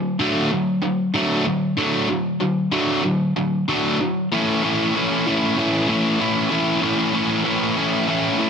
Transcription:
Already playing: D3 F#3
0.19 D3 F#3 A3
0.51 D3 F#3
0.82 D3 F#3
1.14 D3 F#3 A3
1.46 D3 F#3
1.77 D3 F#3 A3
2.09 D3 F#3
2.40 D3 F#3
2.71 D3 F#3 A3
3.04 D3 F#3
3.36 D3 F#3
3.68 D3 F#3 A3
4.00 D3 F#3
4.32 A2 E3 A3 C#4 E4
4.63 A2 E3 A3 C#4 E4
4.95 A2 E3 A3 C#4 E4
5.26 A2 E3 A3 C#4 E4
5.57 A2 E3 A3 C#4 E4
5.88 A2 E3 A3 C#4 E4
6.18 A2 E3 A3 C#4 E4
6.50 A2 E3 A3 C#4 E4
6.81 A2 E3 A3 C#4 E4
7.13 A2 E3 A3 C#4 E4
7.44 A2 E3 A3 C#4 E4
7.75 A2 E3 A3 C#4 E4
8.08 A2 E3 A3 C#4 E4
8.38 A2 E3 A3 C#4 E4

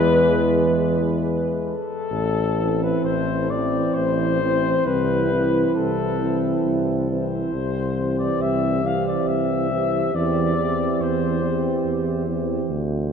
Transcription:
Already playing: E2 E3 G#3 B4
1.63 A4
2.11 A1
2.59 E3 C4 E4
2.83 B4
3.04 A1 C5
3.50 E3 C4 E4 D5
3.94 A1 C5
4.42 E3 C4 E4
4.85 C2 E3 C4 E4 B4
5.31 E3 C4 E4
5.75 C2 A4
6.19 E3 C4 E4
6.66 C2
7.09 E3 C4 E4 C5
7.52 C2
7.96 E3 C4 G4
8.19 D5
8.40 C2 E5
8.83 E3 C4 G4 F5
9.08 D5
9.26 C2 E5
9.70 E3 C4 G4
10.14 E2 E3 C4 G4 D5
10.57 E3 C4 G4
11.00 E2 C5
11.43 E3 C4 G4
11.85 E2
12.27 E3 C4 G4
12.69 D2

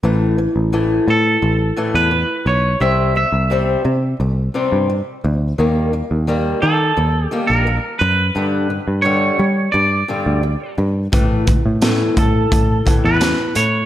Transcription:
0.03 A1 A2 E3 A3
0.38 A2 E3
0.56 A1
0.73 A2 E3 A3
1.08 A2 E3 A4
1.42 A1 A2 E3
1.77 A2 E3 A3
1.94 E2 B4
2.11 A2 E3
2.46 B1 A2 E3 C#5
2.80 C2 C3 G3 C4 E5
3.15 C3 G3 E5
3.32 C2
3.50 C3 G3 C4
3.84 C3 G3
4.20 C2 C3 G3
4.54 C3 G3 C4
4.72 G2
4.89 C3 G3
5.24 D2 C3 G3
5.58 D#2 D#3 G3 A#3
5.93 D#3 G3
6.11 D#2
6.27 D#3 G3 A#3
6.62 D#3 G3 A4
6.97 D#2 D#3 G3
7.26 G4
7.31 D#3 G3 A#3
7.47 A#1 A#4
7.66 D#3 G3
7.99 F#2 D#3 G3 B4
8.35 G2 D3 G3
8.70 G2 D3
8.88 G2
9.02 G2 D3 G3 C#5
9.39 G2 D3 G3
9.72 G2 D3 D5
10.08 G2 D3 G3
10.26 D2
10.43 G2 D3
10.78 G2 D3
11.12 A2 E3 A3, kick, closed hi-hat
11.47 A2 E3, kick, closed hi-hat
11.66 A2
11.81 A2 E3 A3, snare, closed hi-hat
12.16 A2 E3 A4, kick, closed hi-hat
12.51 A2 E3, kick, closed hi-hat
12.85 A2 E3 A3, kick, closed hi-hat
13.05 E2 B4
13.20 A2 E3, snare, closed hi-hat
13.55 A2 E3 C#5, closed hi-hat

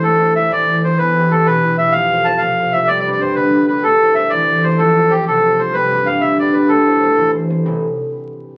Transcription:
Already playing: D4 E4 G4 A4 C5
0.03 A2 A3 A4
0.19 E4 A4 C5
0.36 A2 E4 A4 C5 E5
0.51 A2 E3 D5
0.69 E4 A4 C5
0.83 F2 E4 A4 C5
0.98 E2 E3 B4
1.16 E4 G4 B4
1.31 E2 E4 G4 A4 B4
1.46 E2 B2 B4
1.63 E4 G4
1.78 B1 E4 G4 B4 E5
1.92 F2 F3 F5
2.12 F4 A4 C5
2.25 F2 F4 A4 C5 A5
2.38 F5
2.42 F2 C3
2.60 F4 A4 C5
2.72 D2 F4 A4 C5 E5
2.87 G2 G3 D5
3.00 D5
3.06 D4 G4 B4
3.11 D5
3.20 G2 D4 G4 B4 C5
3.35 G2 D3 B4
3.52 D4 G4
3.57 B4
3.67 D2 D4 G4 B4
3.83 A2 A3 A4
4.02 E4 A4 C5
4.15 A2 E4 A4 C5 E5
4.30 A2 E3 D5
4.50 E4 A4 C5
4.63 E2 E4 A4 C5
4.78 F2 F3 A4
4.96 F4 A4 C5
5.10 F2 F4 G4 A4 C5
5.26 F2 C3 A4
5.45 F4 A4 C5
5.59 C2 F4 A4 C5
5.73 G2 G3 B4
5.92 D4 G4 B4
6.06 G2 D4 G4 B4 F5
6.21 G2 D3 E5
6.39 D4 G4 B4 D5
6.53 G2 D4 G4 B4
6.69 A2 A3 A4
6.86 E4 A4 C5
7.02 A2 E4 C5
7.17 A2 E3
7.34 E4 A4 C5
7.50 E2 E4 A4 C5
7.65 A1 E2 C3 A3 E4 A4

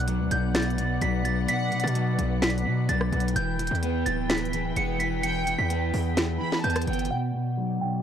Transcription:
Already playing: B1 B2 B3 B4 D5 F#5 F#6
0.00 closed hi-hat
0.07 F#3, closed hi-hat
0.19 D2
0.31 B1 B2 G6, closed hi-hat
0.55 B2 A6, finger snap, snare, closed hi-hat
0.63 closed hi-hat
0.70 closed hi-hat
0.78 B2, closed hi-hat
1.01 B1 F#3 B6, closed hi-hat
1.25 F#3 A6, closed hi-hat
1.48 B2 F#5 B6, closed hi-hat
1.72 B2, closed hi-hat
1.80 B2 A6, closed hi-hat
1.88 closed hi-hat
1.95 F#3, closed hi-hat
2.19 B1 B2, closed hi-hat
2.42 B2 B6, finger snap, snare, closed hi-hat
2.50 closed hi-hat
2.58 closed hi-hat
2.66 B2
2.89 B1 F#3 A6, closed hi-hat
3.01 cross-stick
3.12 B1 F#3, closed hi-hat
3.20 closed hi-hat
3.28 closed hi-hat
3.36 E1 E3 E4 G5 G6, closed hi-hat
3.59 E3, closed hi-hat
3.67 E2, closed hi-hat
3.75 closed hi-hat
3.83 B3, closed hi-hat
4.06 D1 E3 A6, closed hi-hat
4.29 E3 B6, finger snap, snare, closed hi-hat
4.38 closed hi-hat
4.45 closed hi-hat
4.53 E3, closed hi-hat
4.76 E1 B3 C#7, closed hi-hat
5.00 B3 B6, closed hi-hat
5.23 E3 G5 C#7, closed hi-hat
5.47 E3, closed hi-hat
5.58 E2 B6
5.70 B3, closed hi-hat
5.94 E2 E3, open hi-hat
6.17 E3, finger snap, snare, closed hi-hat
6.41 E3 B5
6.52 snare
6.64 E2 B3 A5 G6, closed hi-hat
6.70 closed hi-hat
6.76 cross-stick, closed hi-hat
6.82 closed hi-hat
6.87 G1 B3 G5, closed hi-hat
6.93 closed hi-hat
6.99 closed hi-hat
7.05 closed hi-hat
7.11 B2 B3 F#4 D5 F#5
7.34 B2
7.57 F#3
7.81 B2 G5

